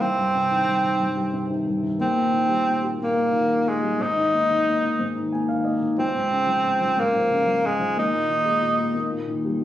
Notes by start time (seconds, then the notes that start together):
0.00 C2 C4
0.17 G2
0.34 C3
0.50 D#3
0.66 G2
0.83 D#3
1.00 G2
1.17 G3
1.33 C3
1.50 D#3
1.66 G2
1.83 D#3
1.99 D#2 C4
2.16 A#2
2.33 D#3
2.49 G3
2.67 A#2
2.82 G4
3.00 A#2 A#3
3.16 A#3
3.32 D#3
3.66 A#2 G#3
3.82 G3
4.00 G#2 D#4
4.17 D#3
4.33 A#3
4.51 D#3
4.67 A#3
4.83 D#3
4.99 G#2
5.15 D#3
5.32 A#3 G#5
5.48 D#3 F5
5.64 A#3 D#5
5.81 D#3
5.98 C#2 C4
6.14 G#2
6.31 C#3
6.47 F3
6.64 G#2
6.81 F3
6.98 G#2 A#3
7.14 F3
7.30 C#3
7.47 F3
7.64 G#2 G#3
7.80 F3
7.96 D#2 D#4
8.13 A#2
8.29 D#3
8.45 G#3
8.61 A#2
8.78 G#3
8.94 D#2
9.11 A#2
9.27 D#3
9.45 G3